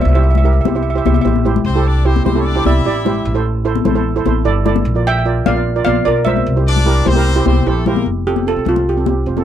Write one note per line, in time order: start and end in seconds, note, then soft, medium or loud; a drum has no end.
0.01 0.61 C2 loud
0.01 0.07 E5 medium
0.08 0.14 E5 medium
0.15 0.33 E4 medium
0.15 0.33 G4 medium
0.15 0.33 C5 medium
0.15 0.22 E5 medium
0.23 0.29 E5 soft
0.31 0.36 E5 medium
0.35 0.44 E5 medium
0.35 low conga medium
0.44 0.57 E4 medium
0.44 0.57 G4 medium
0.44 0.57 A#4 medium
0.44 0.52 E5 medium
0.53 0.60 E5 soft
0.61 0.71 E4 medium
0.61 0.67 E5 medium
0.65 0.72 G4 medium
0.65 0.72 C5 medium
0.65 0.75 E5 soft
0.65 high conga medium
0.65 low conga medium
0.75 0.87 E4 medium
0.75 0.88 G4 medium
0.75 0.87 C5 medium
0.75 0.81 E5 medium
0.83 0.89 E5 soft
0.90 0.97 E5 medium
0.95 1.01 E4 medium
0.95 1.01 G4 medium
0.95 1.02 C5 medium
0.95 1.05 E5 medium
1.05 1.24 C2 medium
1.05 1.18 E4 medium
1.05 1.18 G4 medium
1.05 1.18 C5 medium
1.05 1.13 E5 medium
1.05 high conga medium
1.14 1.20 E5 medium
1.14 high conga medium
1.21 1.62 A1 loud
1.21 1.37 E4 medium
1.21 1.37 G4 medium
1.21 1.37 C5 medium
1.21 1.26 E5 medium
1.26 1.34 E5 medium
1.26 high conga medium
1.36 high conga medium
1.45 1.63 E4 medium
1.45 1.64 G4 medium
1.45 1.64 C5 loud
1.45 low conga medium
1.56 low conga medium
1.65 2.21 C2 loud
1.65 1.84 C4 medium
1.65 1.84 C5 medium
1.75 1.94 E4 medium
1.75 1.94 G4 medium
1.75 1.94 A4 loud
1.87 2.06 D4 medium
1.87 2.06 D5 medium
2.05 2.25 C4 medium
2.05 2.18 E4 medium
2.05 2.18 G4 medium
2.05 2.18 C5 loud
2.05 2.25 C5 medium
2.16 high conga medium
2.25 2.62 C2 medium
2.25 2.40 C4 medium
2.25 2.31 E4 medium
2.25 2.32 G4 medium
2.25 2.40 C5 medium
2.25 2.32 C5 medium
2.25 high conga medium
2.25 low conga medium
2.35 2.47 E4 medium
2.35 2.48 G4 medium
2.35 2.48 A4 medium
2.41 2.46 C#4 medium
2.41 2.46 C#5 medium
2.45 2.65 D4 medium
2.45 2.65 D5 medium
2.56 2.62 E4 medium
2.56 2.62 G4 medium
2.56 2.62 C5 loud
2.65 2.84 C2 medium
2.65 3.42 E4 medium
2.65 2.78 E4 medium
2.65 2.78 G4 medium
2.65 2.78 D5 loud
2.65 3.42 E5 loud
2.65 high conga medium
2.85 3.22 A1 medium
2.85 2.98 E4 medium
2.85 2.98 G4 medium
2.85 2.98 D5 loud
3.05 3.24 E4 medium
3.05 3.24 G4 medium
3.05 3.24 C5 loud
3.05 low conga medium
3.25 3.82 A1 loud
3.34 3.53 E4 medium
3.34 3.53 A4 medium
3.34 3.54 C5 loud
3.65 3.77 E4 loud
3.65 3.78 A4 medium
3.65 3.78 C5 loud
3.75 high conga medium
3.85 4.22 A1 medium
3.85 3.92 E4 medium
3.85 3.92 A4 medium
3.85 3.92 C5 loud
3.85 high conga medium
3.85 low conga medium
3.95 4.08 E4 medium
3.95 4.08 A4 medium
3.95 4.08 C5 loud
4.16 4.22 E4 medium
4.16 4.22 A4 medium
4.16 4.22 C5 loud
4.25 4.44 A1 medium
4.25 4.38 E4 medium
4.25 4.38 A4 medium
4.25 4.38 C5 loud
4.25 high conga medium
4.45 4.82 G1 loud
4.45 4.57 E4 loud
4.45 4.58 A4 medium
4.45 4.58 D5 loud
4.65 4.84 E4 medium
4.65 4.84 A4 medium
4.65 4.84 D5 loud
4.65 low conga medium
4.76 high conga medium
4.85 5.42 A#1 loud
4.95 5.14 F4 medium
4.95 5.14 A#4 medium
4.95 5.14 D5 medium
5.07 5.44 E5 medium
5.07 5.48 G5 loud
5.25 5.38 F4 medium
5.25 5.38 A#4 medium
5.25 5.38 D5 medium
5.46 5.83 A#1 medium
5.46 5.52 F4 medium
5.46 5.52 A#4 medium
5.46 5.52 D5 medium
5.46 5.84 D5 medium
5.46 5.83 F5 medium
5.46 high conga medium
5.46 low conga medium
5.55 5.68 F4 medium
5.55 5.68 A#4 medium
5.55 5.68 D5 medium
5.76 5.82 F4 medium
5.76 5.82 A#4 medium
5.76 5.82 D5 medium
5.85 6.05 A#1 loud
5.85 5.98 F4 medium
5.85 5.98 A#4 medium
5.85 5.98 D5 medium
5.85 6.04 D5 medium
5.85 6.06 F5 loud
5.85 high conga medium
6.05 6.43 B1 medium
6.05 6.18 F4 medium
6.05 6.18 A#4 medium
6.05 6.26 A#4 medium
6.05 6.26 D5 medium
6.05 6.18 D5 medium
6.25 6.44 F4 medium
6.25 6.44 A#4 medium
6.25 7.83 C5 medium
6.25 7.82 E5 medium
6.25 6.44 E5 medium
6.25 low conga medium
6.37 high conga medium
6.47 7.02 C2 loud
6.56 6.74 E4 medium
6.56 6.75 G4 medium
6.56 6.75 C5 medium
6.67 7.04 D4 loud
6.67 7.04 D5 loud
6.76 low conga medium
6.86 6.98 E4 medium
6.86 6.98 G4 medium
6.86 6.99 A#4 loud
7.05 7.43 C2 medium
7.05 7.47 C4 loud
7.05 7.12 E4 medium
7.05 7.12 G4 medium
7.05 7.12 C5 medium
7.05 7.47 C5 loud
7.05 high conga medium
7.05 low conga medium
7.15 7.28 E4 medium
7.15 7.28 G4 medium
7.15 7.28 A#4 loud
7.36 7.42 E4 medium
7.36 7.42 G4 medium
7.36 7.42 C5 loud
7.46 7.64 C2 medium
7.46 7.66 C4 medium
7.46 7.58 E4 medium
7.46 7.58 G4 medium
7.46 7.59 C5 loud
7.46 7.66 C5 medium
7.46 high conga medium
7.66 8.03 A#1 loud
7.66 7.87 A3 medium
7.66 7.79 E4 medium
7.66 7.79 G4 medium
7.66 7.87 A4 medium
7.66 7.79 C5 loud
7.86 8.07 A#3 medium
7.86 8.05 E4 medium
7.86 8.05 G4 medium
7.86 8.07 A#4 medium
7.86 8.05 C5 loud
7.86 low conga medium
7.96 high conga medium
8.06 8.53 F1 medium
8.27 8.39 C4 medium
8.27 8.39 F4 medium
8.27 8.45 G4 medium
8.27 8.39 A4 medium
8.36 high conga medium
8.47 8.59 C4 medium
8.47 8.59 F4 medium
8.47 8.59 A4 medium
8.47 8.68 A4 medium
8.56 8.64 C2 medium
8.65 9.22 C2 medium
8.65 8.85 C4 medium
8.65 8.85 F4 medium
8.65 8.88 F4 medium
8.65 8.86 A4 medium
8.65 low conga medium
8.76 low conga medium
8.89 9.25 G4 medium
8.97 9.03 C4 medium
8.97 9.03 F4 medium
8.97 9.03 A4 medium
9.06 9.19 C4 medium
9.06 9.19 F4 medium
9.06 9.19 G4 medium
9.06 high conga medium
9.26 9.44 F1 medium
9.26 9.33 C4 medium
9.26 9.33 F4 medium
9.26 9.33 C5 medium
9.37 9.43 C4 medium
9.37 9.43 F4 medium
9.37 9.43 A4 medium
9.37 high conga medium